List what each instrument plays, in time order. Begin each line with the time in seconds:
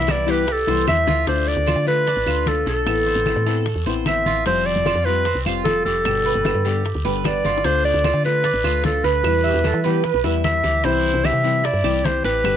Already playing: fm bass C2, cuban tres E4
0.00 clarinet E5
0.07 nylon-string guitar E3 G3 B3 E4, high bongo, high conga, short guiro, claves, maracas
0.11 clarinet D5
0.27 nylon-string guitar E3 G3 B3 E4, cuban tres G4, clarinet B4, high bongo, high conga, short guiro, maracas
0.47 muted nylon-string guitar stroke, high bongo, high conga, long guiro, maracas
0.52 clarinet A4
0.67 fm bass C2, nylon-string guitar E3 G3 B3 E4, cuban tres C5, high bongo, high conga, maracas
0.87 fm bass E2, nylon-string guitar B3, clarinet E5, high bongo, high conga, short guiro, claves, maracas
1.07 fm bass D2, cuban tres F4, low bongo, high conga, short guiro, maracas
1.27 fm bass D2, nylon-string guitar D3 A3 D4 F4, cuban tres D4, clarinet C5, high bongo, high conga, long guiro, maracas
1.47 clarinet D5, high bongo, high conga, maracas
1.57 fm bass D2
1.66 nylon-string guitar D3 A3 D4 F4, cuban tres F4, high bongo, high conga, short guiro, claves, maracas
1.76 fm bass D3
1.87 nylon-string guitar A3 D4 F4, clarinet B4, high bongo, high conga, short guiro, maracas
2.07 cuban tres D4, muted nylon-string guitar stroke, high bongo, high conga, long guiro, maracas
2.17 fm bass A1
2.26 fm bass D2, nylon-string guitar A3 D4 F4, cuban tres F4, high bongo, high conga, claves, maracas
2.46 nylon-string guitar D3 A3 D4 F4, clarinet A4, high bongo, low bongo, high conga, short guiro, maracas
2.66 fm bass B1, cuban tres A4, clarinet A4, short guiro, maracas
2.86 fm bass A1, nylon-string guitar E3 B3 C4 E4, high bongo, high conga, long guiro, claves, maracas
3.06 cuban tres C5, high bongo, high conga
3.15 fm bass A1
3.26 nylon-string guitar E3 B3 C4 E4, high bongo, high conga, short guiro, claves, maracas
3.36 fm bass A2
3.46 nylon-string guitar B3 C4 E4, cuban tres A4, high bongo, high conga, short guiro, maracas
3.66 muted nylon-string guitar stroke, high bongo, high conga, long guiro, maracas
3.75 fm bass E2
3.86 fm bass A1, nylon-string guitar B3 C4 E4, cuban tres C5, high bongo, high conga, maracas
4.06 nylon-string guitar E3 B3 C4 E4, clarinet E5, high bongo, low bongo, high conga, short guiro, claves, maracas
4.26 fm bass A1, cuban tres F4, high conga, short guiro, maracas
4.46 fm bass F1, nylon-string guitar F3 G3 C4 F4, cuban tres C4, clarinet C5, high bongo, high conga, long guiro, maracas
4.66 clarinet D5, high bongo, high conga
4.76 fm bass F1
4.86 nylon-string guitar F3 G3 C4 F4, cuban tres F4, high bongo, high conga, short guiro, claves, maracas
4.95 fm bass F2
5.05 nylon-string guitar G3 C4 F4, clarinet B4, high bongo, high conga, short guiro, maracas
5.25 cuban tres C4, muted nylon-string guitar stroke, high bongo, high conga, long guiro, maracas
5.35 fm bass C2
5.45 fm bass F1, nylon-string guitar G3 C4 F4, cuban tres F4, high bongo, high conga, claves
5.64 nylon-string guitar F3 G3 C4 F4, clarinet A4, high bongo, low bongo, high conga, short guiro, maracas
5.85 fm bass F1, cuban tres G4, clarinet A4, short guiro, maracas
6.05 fm bass G1, nylon-string guitar B2 D3 G3 B3 G4, high bongo, high conga, long guiro, claves, maracas
6.25 cuban tres B4, high bongo, high conga, maracas
6.35 fm bass G1
6.44 nylon-string guitar D3 G3 B3 G4, high bongo, high conga, short guiro, claves, maracas
6.55 fm bass G2
6.65 nylon-string guitar D3 G3 B3 G4, cuban tres G4, high bongo, high conga, short guiro, maracas
6.84 muted nylon-string guitar stroke, high bongo, high conga, long guiro, maracas
6.95 fm bass D2
7.05 fm bass G1, nylon-string guitar D3 G3 B3 G4, cuban tres B4, high bongo, high conga, maracas
7.24 nylon-string guitar D3 G3 B3 G4, clarinet D5, high bongo, low bongo, high conga, short guiro, claves, maracas
7.44 fm bass G1, cuban tres F4, high bongo, high conga, short guiro, maracas
7.58 low bongo
7.64 fm bass D2, nylon-string guitar D3 A3 D4 F4, cuban tres D4, clarinet C5, high bongo, high conga, long guiro, maracas
7.84 clarinet D5, high bongo, high conga, maracas
7.94 fm bass D2
8.04 nylon-string guitar D3 A3 D4 F4, cuban tres F4, high bongo, high conga, short guiro, claves, maracas
8.14 fm bass D3
8.24 nylon-string guitar A3 D4 F4, clarinet B4, high bongo, high conga, short guiro, maracas
8.44 cuban tres D4, muted nylon-string guitar stroke, high bongo, high conga, long guiro, maracas
8.54 fm bass A1
8.64 fm bass D2, nylon-string guitar A3 D4 F4, cuban tres F4, high bongo, high conga, claves
8.84 nylon-string guitar D3 A3 D4 F4, clarinet A4, high bongo, low bongo, high conga, short guiro, maracas
9.04 fm bass D2, cuban tres B4, clarinet B4, short guiro, maracas
9.24 fm bass E2, nylon-string guitar B2 E3 G3 B3 E4, high bongo, high conga, long guiro, claves, maracas
9.44 flute G4, cuban tres E5, high bongo, high conga, maracas
9.54 fm bass E2
9.63 nylon-string guitar E3 G3 B3 E4, flute A4, high bongo, high conga, short guiro, claves, maracas
9.74 fm bass E3
9.84 nylon-string guitar E3 G3 B3 E4, flute G4, cuban tres B4, high bongo, high conga, short guiro, maracas
10.04 flute B4, muted nylon-string guitar stroke, high bongo, high conga, long guiro, maracas
10.14 fm bass B1
10.24 fm bass E2, nylon-string guitar E3 G3 B3 E4, cuban tres E5, high bongo, high conga, maracas
10.44 nylon-string guitar E3 G3 B3 E4, clarinet E5, high bongo, low bongo, high conga, short guiro, claves, maracas
10.64 fm bass D2, cuban tres G4, high conga, short guiro, maracas
10.84 fm bass C2, nylon-string guitar C3 E3 G3 C4 E4, cuban tres E4, clarinet C5, high bongo, high conga, long guiro, maracas
11.04 high bongo, high conga
11.14 fm bass C2
11.24 nylon-string guitar E3 G3 C4 E4, cuban tres G4, clarinet E5, high bongo, high conga, short guiro, claves, maracas
11.33 fm bass C3
11.44 nylon-string guitar E3 G3 C4 E4, high bongo, high conga, short guiro, maracas
11.64 cuban tres E4, clarinet D5, muted nylon-string guitar stroke, high bongo, high conga, long guiro, maracas
11.73 fm bass G2
11.84 fm bass C2, nylon-string guitar E3 G3 C4 E4, cuban tres G4, high bongo, high conga, claves, maracas
12.04 nylon-string guitar E3 C4 E4, clarinet C5, high bongo, low bongo, high conga, short guiro, maracas
12.24 fm bass A1, cuban tres G4, clarinet B4, short guiro, maracas
12.44 fm bass G1, nylon-string guitar B2 D3 G3 B3 G4, high bongo, high conga, long guiro, claves, maracas